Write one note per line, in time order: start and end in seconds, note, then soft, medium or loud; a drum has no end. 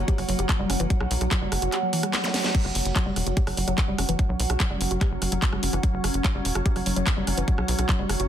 0.00 2.53 F#3 medium
0.00 2.57 A#3 medium
0.00 8.28 F#4 medium
0.00 8.28 C#5 medium
0.00 8.28 F#5 medium
0.08 0.14 G4 medium
0.08 kick loud
0.08 closed hi-hat medium
0.18 0.25 F#1 medium
0.18 0.22 F#3 medium
0.18 cross-stick soft
0.18 open hi-hat medium
0.29 0.35 F#1 medium
0.29 0.35 F#3 medium
0.29 open hi-hat loud
0.39 0.46 F#1 medium
0.39 0.43 G4 medium
0.39 closed hi-hat medium
0.49 kick loud
0.49 cross-stick medium
0.49 clap loud
0.49 closed hi-hat medium
0.59 0.66 F#1 medium
0.59 0.69 G3 loud
0.70 0.76 F#1 loud
0.70 0.74 C#4 medium
0.70 cross-stick soft
0.70 open hi-hat loud
0.80 0.87 F#1 loud
0.80 0.84 E3 loud
0.80 closed hi-hat medium
0.90 0.97 F#3 medium
0.90 kick loud
0.90 closed hi-hat medium
1.00 1.07 B1 loud
1.00 1.10 F#3 medium
1.00 cross-stick medium
1.11 1.17 B1 loud
1.11 open hi-hat loud
1.21 1.28 B1 medium
1.21 cross-stick soft
1.21 closed hi-hat medium
1.31 1.38 F#3 loud
1.31 kick loud
1.31 clap loud
1.31 closed hi-hat medium
1.42 1.48 F#1 medium
1.42 1.51 G3 loud
1.52 1.59 F#1 loud
1.52 cross-stick medium
1.52 open hi-hat loud
1.62 1.69 F#1 medium
1.62 1.69 F#4 medium
1.62 closed hi-hat medium
1.72 1.79 G4 medium
1.72 cross-stick soft
1.72 clap soft
1.72 closed hi-hat medium
1.83 1.87 F#3 medium
1.93 2.03 E3 loud
1.93 open hi-hat loud
2.03 2.13 G3 loud
2.03 cross-stick medium
2.03 closed hi-hat medium
2.14 snare medium
2.14 clap loud
2.14 closed hi-hat medium
2.24 2.30 F#3 loud
2.24 snare medium
2.24 zap medium
2.34 2.43 F#3 medium
2.34 snare medium
2.34 open hi-hat loud
2.44 2.51 F#3 medium
2.44 snare medium
2.44 open hi-hat medium
2.55 2.61 F#3 medium
2.55 8.28 F#3 medium
2.55 8.28 C#4 medium
2.55 kick loud
2.55 closed hi-hat medium
2.55 crash medium
2.65 2.72 F#1 medium
2.65 2.74 F#3 medium
2.65 cross-stick soft
2.75 2.82 F#1 loud
2.75 open hi-hat loud
2.85 2.92 F#1 medium
2.85 closed hi-hat medium
2.96 3.02 F#3 loud
2.96 kick loud
2.96 cross-stick medium
2.96 clap loud
2.96 closed hi-hat medium
3.06 3.13 F#1 medium
3.06 3.16 G3 loud
3.16 3.23 E1 loud
3.16 cross-stick soft
3.16 open hi-hat loud
3.27 3.33 F#1 medium
3.27 3.33 F#4 medium
3.27 closed hi-hat medium
3.37 3.43 G4 medium
3.37 kick loud
3.37 closed hi-hat medium
3.47 3.54 F#1 medium
3.47 3.51 F#3 medium
3.47 cross-stick medium
3.47 open hi-hat medium
3.57 3.64 F#1 loud
3.57 3.64 F#3 medium
3.57 open hi-hat loud
3.68 3.74 F#1 medium
3.68 3.74 F#3 loud
3.68 cross-stick soft
3.68 closed hi-hat medium
3.78 kick loud
3.78 clap loud
3.78 closed hi-hat medium
3.88 3.95 F#1 medium
3.88 3.98 G3 loud
3.98 4.05 F#1 loud
3.98 4.02 C#4 medium
3.98 cross-stick medium
3.98 open hi-hat loud
4.09 4.15 F#1 medium
4.09 4.13 E3 loud
4.09 closed hi-hat medium
4.19 4.25 F#3 medium
4.19 kick loud
4.19 cross-stick soft
4.19 closed hi-hat medium
4.29 4.36 B1 medium
4.29 4.39 F#3 medium
4.40 4.46 B1 loud
4.40 open hi-hat loud
4.50 4.57 B1 medium
4.50 cross-stick medium
4.50 closed hi-hat medium
4.60 4.66 F#3 loud
4.60 kick loud
4.60 clap loud
4.60 closed hi-hat medium
4.70 4.77 F#1 medium
4.70 4.80 G3 loud
4.70 cross-stick soft
4.81 4.87 F#1 loud
4.81 open hi-hat loud
4.91 4.98 F#1 loud
4.91 4.97 F#4 medium
4.91 closed hi-hat medium
5.01 5.08 G4 medium
5.01 kick loud
5.01 cross-stick medium
5.01 clap soft
5.01 closed hi-hat medium
5.11 5.18 F#1 medium
5.11 5.15 F#3 medium
5.22 5.28 F#1 medium
5.22 5.28 F#3 medium
5.22 cross-stick soft
5.22 open hi-hat loud
5.32 5.39 F#1 medium
5.32 5.38 F#3 loud
5.32 closed hi-hat medium
5.42 kick loud
5.42 clap loud
5.42 closed hi-hat medium
5.53 5.59 F#1 medium
5.53 5.62 G3 loud
5.53 cross-stick medium
5.63 5.70 F#1 loud
5.63 5.67 C#4 medium
5.63 open hi-hat loud
5.73 5.80 F#1 loud
5.73 5.77 E3 loud
5.73 cross-stick soft
5.73 closed hi-hat medium
5.83 5.90 F#3 medium
5.83 kick loud
5.83 closed hi-hat medium
5.94 6.00 F#1 medium
5.94 6.03 F#3 medium
6.04 6.11 F#1 loud
6.04 cross-stick medium
6.04 open hi-hat loud
6.14 6.21 F#1 medium
6.14 closed hi-hat medium
6.25 6.31 F#3 loud
6.25 kick loud
6.25 cross-stick soft
6.25 clap loud
6.25 closed hi-hat medium
6.35 6.41 F#1 medium
6.35 6.44 G3 loud
6.45 6.52 E1 loud
6.45 open hi-hat loud
6.55 6.62 F#1 medium
6.55 6.62 F#4 medium
6.55 cross-stick medium
6.55 closed hi-hat medium
6.66 6.72 G4 medium
6.66 kick loud
6.66 closed hi-hat medium
6.76 6.83 F#1 medium
6.76 6.80 F#3 medium
6.76 cross-stick soft
6.76 open hi-hat medium
6.86 6.93 F#1 medium
6.86 6.92 F#3 medium
6.86 open hi-hat loud
6.96 7.03 F#1 medium
6.96 7.03 F#3 loud
6.96 closed hi-hat medium
7.07 kick loud
7.07 cross-stick medium
7.07 clap loud
7.07 closed hi-hat medium
7.17 7.24 F#1 medium
7.17 7.27 G3 loud
7.27 7.34 F#1 loud
7.27 7.31 C#4 medium
7.27 cross-stick soft
7.27 open hi-hat loud
7.38 7.44 F#1 loud
7.38 7.41 E3 loud
7.38 closed hi-hat medium
7.48 7.54 F#3 medium
7.48 kick loud
7.48 closed hi-hat medium
7.58 7.65 B1 medium
7.58 7.68 F#3 medium
7.58 cross-stick medium
7.68 7.75 B1 loud
7.68 open hi-hat loud
7.79 7.85 B1 medium
7.79 cross-stick soft
7.79 closed hi-hat medium
7.89 7.95 F#3 loud
7.89 kick loud
7.89 clap loud
7.89 closed hi-hat medium
7.99 8.06 F#1 medium
7.99 8.09 G3 loud
8.09 8.16 F#1 loud
8.09 cross-stick medium
8.09 open hi-hat loud
8.20 8.26 F#1 medium
8.20 8.26 F#4 medium
8.20 closed hi-hat medium